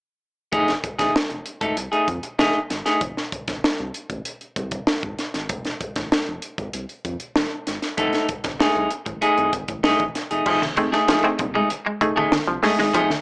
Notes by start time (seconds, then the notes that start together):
0.52 F1 A3 D#4 G#4, kick, closed hi-hat
0.68 snare, closed hi-hat
0.83 muted clean electric guitar stroke, kick, closed hi-hat
0.99 A1 A3 D#4 G#4, kick, snare, closed hi-hat
1.15 F1, muted clean electric guitar stroke, snare
1.30 F1, muted clean electric guitar stroke, closed hi-hat
1.46 closed hi-hat
1.61 G#1 A3 D#4 A4, kick, closed hi-hat
1.77 C2, muted clean electric guitar stroke, closed hi-hat
1.92 A3 D#4 G#4, closed hi-hat
2.08 F2, muted clean electric guitar stroke, kick, closed hi-hat
2.23 muted clean electric guitar stroke, closed hi-hat
2.39 F1 A3 D#4 G#4, snare
2.70 G#1, muted clean electric guitar stroke, snare, closed hi-hat
2.86 A3 D#4 G#4, snare, closed hi-hat
3.01 F1, kick, closed hi-hat
3.17 snare
3.32 kick, closed hi-hat
3.48 G#1, kick, snare, closed hi-hat
3.64 snare
3.80 C2
3.94 closed hi-hat
4.10 A1, kick, closed hi-hat
4.25 closed hi-hat
4.41 closed hi-hat
4.56 C2, kick, closed hi-hat
4.71 kick, closed hi-hat
4.87 G#1, snare
5.03 G#1, kick
5.19 snare, closed hi-hat
5.34 G#1, snare, closed hi-hat
5.49 F1, kick, closed hi-hat
5.65 snare, closed hi-hat
5.81 kick, closed hi-hat
5.96 A1, kick, snare, closed hi-hat
6.12 F1, snare
6.28 F1
6.42 closed hi-hat
6.58 G#1, kick, closed hi-hat
6.73 C2, closed hi-hat
6.89 closed hi-hat
7.05 F2, kick, closed hi-hat
7.20 closed hi-hat
7.36 F1, snare
7.67 G#1, snare, closed hi-hat
7.82 snare, closed hi-hat
7.97 F1 A3 D#4 A4, kick, closed hi-hat
8.13 snare, closed hi-hat
8.29 kick, closed hi-hat
8.44 G#1, muted clean electric guitar stroke, kick, snare, closed hi-hat
8.60 A3 D#4 G#4, snare
8.76 C2
8.91 muted clean electric guitar stroke, closed hi-hat
9.06 A1, muted clean electric guitar stroke, kick, closed hi-hat
9.21 A3 D#4 G#4, closed hi-hat
9.38 C2, closed hi-hat
9.52 G#1, muted clean electric guitar stroke, kick, closed hi-hat
9.68 A1, muted clean electric guitar stroke, kick, closed hi-hat
9.83 C2 A3 D#4 G#4, snare
9.99 A1, kick, closed hi-hat
10.15 muted clean electric guitar stroke, snare, closed hi-hat
10.31 F1 A3 D#4 G#4, closed hi-hat
10.46 F1 F3 A3 D#4 G#4, kick, crash, muted conga, low conga
10.61 muted clean electric guitar stroke, snare, high conga
10.77 A3 C4 D#4 G#4, muted clean electric guitar stroke, kick, closed hi-hat, muted conga
10.92 A3 D#4 G#4, snare
11.07 F3 A3 D#4 G#4, snare, closed hi-hat
11.24 C2 A3 C4 D#4 G#4
11.39 C2 D#4 G#4, muted clean electric guitar stroke, kick, closed hi-hat, low conga
11.55 G#3 A3 D#4 G#4
11.69 muted clean electric guitar stroke, closed hi-hat, muted conga
11.86 G#3, muted clean electric guitar stroke
12.01 A1 A3 D#4 G#4, muted clean electric guitar stroke, kick, closed hi-hat, muted conga
12.16 A1 A3 D#4 G#4, high conga
12.32 C2 D#4 G#4, muted clean electric guitar stroke, snare, closed hi-hat, muted conga, high conga
12.47 C2 F3, muted clean electric guitar stroke
12.63 G#3 A3 D#4 G#4, snare, open hi-hat, muted conga, low conga
12.78 G#1 G#3 A3 D#4 G#4, snare
12.94 F1 F3 A3 D#4 G#4, closed hi-hat, muted conga, low conga
13.10 muted clean electric guitar stroke, snare, high conga